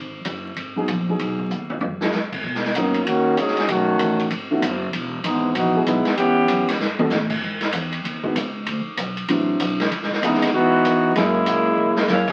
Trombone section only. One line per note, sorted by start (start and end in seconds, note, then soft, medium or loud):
2.75 3.04 F#3 medium
2.75 3.04 A#3 medium
2.75 3.04 C#4 medium
2.75 3.04 D#4 medium
3.06 3.38 D#3 medium
3.06 3.37 A#3 medium
3.06 3.36 C#4 medium
3.06 3.37 F#4 loud
3.37 3.69 F#3 medium
3.37 3.69 C#4 medium
3.37 3.69 D#4 medium
3.37 3.69 G#4 loud
3.70 4.32 D#3 medium
3.70 4.31 A3 medium
3.70 4.32 C#4 medium
3.70 4.32 F#4 medium
5.24 5.53 E3 medium
5.24 5.54 G#3 medium
5.24 5.53 B3 medium
5.24 5.54 D#4 medium
5.55 5.86 E3 medium
5.55 5.83 B3 medium
5.55 5.83 D#4 loud
5.55 5.86 F#4 loud
5.84 6.14 G#3 medium
5.84 6.14 B3 medium
5.84 6.14 D#4 medium
5.84 6.15 E4 medium
6.16 6.75 E3 medium
6.16 6.75 B3 medium
6.16 6.75 C#4 medium
6.16 6.75 G4 loud
10.23 10.52 G#3 medium
10.23 10.51 B3 medium
10.23 10.51 D#4 medium
10.23 10.51 E4 medium
10.54 11.12 E3 loud
10.54 11.12 B3 loud
10.54 11.12 D#4 loud
10.54 11.12 F#4 loud
11.15 12.28 G#3 medium
11.15 12.28 A#3 medium
11.15 12.28 C#4 medium
11.15 12.28 E4 loud